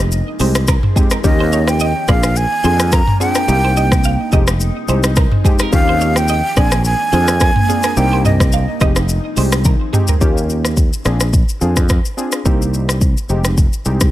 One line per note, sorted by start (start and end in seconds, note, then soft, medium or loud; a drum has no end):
0.00 0.20 F1 medium
0.12 shaker medium
0.40 0.76 C2 medium
0.40 0.61 G#3 medium
0.40 0.61 C4 medium
0.40 0.61 D#4 medium
0.40 0.61 G4 medium
0.40 0.52 C5 medium
0.40 open hi-hat medium
0.40 shaker soft
0.55 cross-stick loud
0.55 shaker medium
0.67 0.80 A#4 medium
0.67 kick loud
0.67 cross-stick loud
0.67 shaker medium
0.83 mid tom medium
0.96 1.17 G#3 medium
0.96 1.17 C4 medium
0.96 1.17 D#4 medium
0.96 1.17 G4 medium
0.96 1.08 G#4 medium
0.96 kick loud
0.96 shaker medium
1.11 1.22 A#4 medium
1.11 cross-stick medium
1.11 shaker medium
1.24 1.92 D#2 loud
1.24 1.76 A#3 medium
1.24 4.29 A#3 medium
1.24 1.76 C#4 medium
1.24 1.76 F4 medium
1.24 1.76 G4 loud
1.24 1.69 D#5 medium
1.24 kick loud
1.24 shaker medium
1.40 1.50 C5 medium
1.52 1.65 C#5 medium
1.52 shaker soft
1.68 2.10 G5 loud
1.68 cross-stick medium
1.68 shaker medium
1.80 1.93 D#5 medium
1.80 shaker medium
2.08 2.45 A#1 medium
2.08 2.29 C4 medium
2.08 2.29 D4 medium
2.08 2.30 F4 medium
2.08 2.30 G#4 medium
2.08 2.21 D5 medium
2.08 2.38 F5 loud
2.08 kick loud
2.08 cross-stick medium
2.08 shaker soft
2.23 cross-stick loud
2.23 shaker medium
2.36 2.94 G#5 loud
2.36 shaker medium
2.64 3.01 F2 loud
2.64 2.85 C4 medium
2.64 2.85 D4 medium
2.64 2.86 F4 medium
2.64 2.86 G#4 medium
2.64 2.77 C5 medium
2.64 shaker soft
2.79 cross-stick loud
2.79 shaker medium
2.92 3.05 A#4 medium
2.92 3.20 A#5 loud
2.92 kick loud
2.92 cross-stick loud
2.92 shaker medium
3.07 mid tom medium
3.20 3.41 C4 medium
3.20 3.42 D4 medium
3.20 3.42 F4 medium
3.20 3.42 G#4 medium
3.20 3.33 G#4 medium
3.20 4.29 G5 loud
3.20 shaker medium
3.35 3.46 A#4 medium
3.35 cross-stick medium
3.35 shaker medium
3.48 4.16 C2 loud
3.48 4.00 A#3 loud
3.48 4.00 C4 medium
3.48 5.70 D#4 medium
3.48 4.00 D#4 medium
3.48 4.00 G4 loud
3.48 shaker medium
3.65 3.74 C5 medium
3.77 3.89 D#5 medium
3.77 shaker soft
3.92 kick medium
3.92 cross-stick loud
3.92 shaker medium
4.04 4.17 F5 medium
4.04 shaker medium
4.32 4.69 F1 medium
4.32 4.54 G#3 medium
4.32 4.54 C4 medium
4.32 4.54 D#4 medium
4.32 4.54 G4 medium
4.32 4.45 D#5 medium
4.32 kick medium
4.32 shaker soft
4.47 cross-stick loud
4.47 shaker medium
4.60 shaker medium
4.88 5.25 C2 medium
4.88 5.10 G#3 medium
4.88 5.10 C4 medium
4.88 5.10 D#4 medium
4.88 5.10 G4 medium
4.88 5.01 C5 medium
4.88 shaker medium
5.03 cross-stick medium
5.03 shaker medium
5.16 5.29 A#4 medium
5.16 kick loud
5.16 cross-stick loud
5.16 shaker medium
5.32 mid tom medium
5.44 5.66 G#3 medium
5.44 5.66 C4 medium
5.44 5.66 D#4 medium
5.44 5.66 G4 medium
5.44 5.61 G#4 medium
5.44 kick loud
5.44 shaker medium
5.59 5.70 A#4 medium
5.59 cross-stick medium
5.59 shaker medium
5.72 6.41 D#2 loud
5.72 6.24 A#3 medium
5.72 8.78 A#3 medium
5.72 6.25 C#4 medium
5.72 6.25 F4 medium
5.72 6.25 G4 loud
5.72 6.18 F5 loud
5.72 kick loud
5.72 shaker medium
5.89 5.98 C5 medium
6.01 6.13 C#5 medium
6.01 shaker soft
6.16 6.59 G5 loud
6.16 cross-stick medium
6.16 shaker medium
6.28 6.41 D#5 medium
6.28 shaker medium
6.56 6.93 A#1 medium
6.56 6.78 C4 medium
6.56 6.78 D4 medium
6.56 6.78 F4 medium
6.56 6.78 G#4 medium
6.56 6.69 D5 medium
6.56 6.85 G#5 loud
6.56 kick loud
6.56 cross-stick medium
6.56 shaker soft
6.72 cross-stick loud
6.72 shaker medium
6.85 7.99 G#5 loud
6.85 shaker medium
7.12 7.49 F2 loud
7.12 7.34 C4 medium
7.12 7.34 D4 medium
7.12 7.34 F4 medium
7.12 7.34 G#4 medium
7.12 7.25 C5 medium
7.12 shaker soft
7.28 cross-stick medium
7.28 shaker medium
7.40 7.53 A#4 medium
7.40 kick loud
7.40 cross-stick loud
7.40 shaker medium
7.56 mid tom medium
7.69 7.90 C4 medium
7.69 7.90 D4 medium
7.69 7.90 F4 medium
7.69 7.90 G#4 medium
7.69 7.81 G#4 medium
7.69 shaker medium
7.83 7.95 A#4 medium
7.83 cross-stick medium
7.83 shaker medium
7.97 8.65 C2 loud
7.97 8.49 A#3 medium
7.97 8.49 C4 medium
7.97 8.49 D#4 medium
7.97 10.19 D#4 medium
7.97 8.49 G4 loud
7.97 8.25 G5 loud
7.97 shaker medium
8.13 8.23 C5 medium
8.25 8.78 D#5 medium
8.25 8.37 D#5 medium
8.25 mid tom medium
8.25 shaker soft
8.40 kick loud
8.40 cross-stick loud
8.40 shaker medium
8.52 8.65 F5 medium
8.52 shaker medium
8.81 9.18 F1 medium
8.81 9.02 G#3 medium
8.81 9.02 C4 medium
8.81 9.02 D#4 medium
8.81 9.02 G4 medium
8.81 8.93 D#5 medium
8.81 kick medium
8.81 cross-stick medium
8.81 shaker soft
8.96 cross-stick loud
8.96 shaker medium
9.09 shaker medium
9.37 9.74 C2 medium
9.37 9.58 G#3 medium
9.37 9.58 C4 medium
9.37 9.58 D#4 medium
9.37 9.59 G4 medium
9.37 9.49 C5 medium
9.37 open hi-hat medium
9.37 shaker medium
9.52 cross-stick loud
9.52 shaker medium
9.65 9.77 A#4 medium
9.65 kick loud
9.65 high tom medium
9.65 shaker medium
9.93 10.14 G#3 medium
9.93 10.14 C4 medium
9.93 10.15 D#4 medium
9.93 10.15 G4 medium
9.93 10.05 G#4 medium
9.93 mid tom medium
9.93 shaker medium
10.08 10.19 A#4 medium
10.08 floor tom medium
10.08 shaker medium
10.21 10.89 D#2 loud
10.21 10.73 A#3 medium
10.21 10.73 C#4 medium
10.21 10.73 F4 medium
10.21 10.73 G4 loud
10.21 kick loud
10.21 shaker medium
10.38 shaker medium
10.50 shaker soft
10.65 cross-stick medium
10.65 shaker medium
10.77 kick medium
10.77 shaker medium
10.93 shaker medium
11.05 11.42 A#1 medium
11.05 11.26 C4 medium
11.05 11.27 D4 medium
11.05 11.27 F4 medium
11.05 11.27 G#4 medium
11.05 cross-stick medium
11.05 shaker soft
11.20 cross-stick medium
11.20 shaker medium
11.33 kick loud
11.33 shaker medium
11.49 shaker medium
11.61 11.98 F2 medium
11.61 11.83 C4 medium
11.61 11.83 D4 medium
11.61 11.83 F4 medium
11.61 11.83 G#4 medium
11.61 shaker soft
11.76 kick loud
11.76 cross-stick medium
11.76 shaker loud
11.89 kick loud
11.89 cross-stick loud
11.89 shaker medium
12.05 shaker medium
12.17 12.39 C4 medium
12.17 12.39 D4 medium
12.17 12.39 F4 medium
12.17 12.39 G#4 medium
12.17 shaker medium
12.32 cross-stick medium
12.32 shaker loud
12.45 13.13 C2 loud
12.45 12.97 A#3 medium
12.45 12.97 C4 medium
12.45 12.98 D#4 medium
12.45 12.98 G4 loud
12.45 kick loud
12.45 shaker medium
12.62 shaker medium
12.74 shaker soft
12.89 cross-stick loud
12.89 shaker medium
13.01 kick loud
13.01 shaker medium
13.17 shaker medium
13.29 13.66 F1 medium
13.29 13.51 G#3 medium
13.29 13.51 C4 medium
13.29 13.51 D#4 medium
13.29 13.51 G4 medium
13.29 shaker soft
13.44 cross-stick medium
13.44 shaker medium
13.57 kick loud
13.57 shaker medium
13.73 shaker medium
13.85 14.11 C2 medium
13.85 14.07 G#3 medium
13.85 14.07 C4 medium
13.85 14.07 D#4 medium
13.85 14.07 G4 medium
13.85 shaker soft
14.01 kick medium
14.01 cross-stick medium
14.01 shaker medium